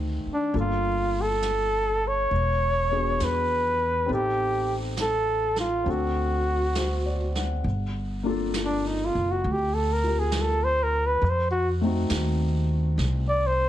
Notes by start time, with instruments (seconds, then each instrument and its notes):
Already playing: upright bass D2, grand piano D#3 A3 C4 F#4 A4
0.26 muted upright bass stroke
0.33 flugelhorn D4
0.54 upright bass G1, grand piano A#3 D4 F4 A4, brush sweep
0.60 flugelhorn F4
1.21 flugelhorn A4
1.43 snare, hi-hat pedal
2.08 flugelhorn C#5
2.31 upright bass E1, brush sweep
2.91 grand piano B3 D4 F#4 G#4
3.20 upright bass E2, flugelhorn B4, snare, hi-hat pedal
4.06 upright bass A1, grand piano C4 D#4 G4, brush sweep
4.11 flugelhorn G4, grand piano A4
4.97 snare, hi-hat pedal
5.02 flugelhorn A4
5.56 flugelhorn F4, snare
5.84 upright bass D2, grand piano C4 D4 F#4, brush sweep
5.89 flugelhorn F#4, grand piano A4
6.75 grand piano C5, snare, hi-hat pedal
7.06 grand piano D5
7.35 grand piano F#5, snare
7.64 upright bass G1, brush sweep
8.23 grand piano A#3 D4 F4
8.29 grand piano A4
8.54 snare, hi-hat pedal
8.65 flugelhorn D4
8.87 flugelhorn D#4
9.05 flugelhorn F4
9.15 upright bass F#1
9.31 flugelhorn F#4
9.43 upright bass D2, brush sweep
9.52 flugelhorn G4
9.74 flugelhorn A4
9.93 flugelhorn A#4
10.04 grand piano F4 G4 A#4
10.19 flugelhorn G#4
10.32 snare, hi-hat pedal
10.41 flugelhorn A4
10.64 flugelhorn C5
10.83 flugelhorn A#4
11.06 flugelhorn B4
11.21 upright bass F2, brush sweep
11.29 flugelhorn C5
11.51 flugelhorn F#4
11.81 grand piano A3 C4 D#4
11.87 grand piano F#4
12.10 upright bass D#2, snare, hi-hat pedal
12.98 upright bass C2, brush sweep, snare
13.28 flugelhorn D5
13.46 flugelhorn C5